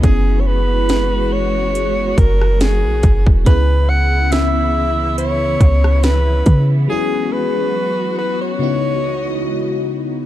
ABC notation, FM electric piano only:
X:1
M:4/4
L:1/8
Q:"Swing 16ths" 1/4=70
K:C#m
V:1 name="FM electric piano"
[B,CEG]8 | [B,CEG]8 | [F,B,CEG]4 [C,B,DEF]4 |]